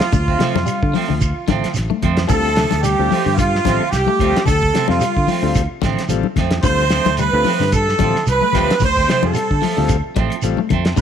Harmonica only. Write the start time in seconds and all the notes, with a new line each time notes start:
Already playing: F4
2.29 A4
2.83 G4
3.36 F4
3.90 G4
4.45 A4
4.89 F4
6.65 C5
7.20 B4
7.76 A4
8.32 B4
8.85 C5
9.26 A4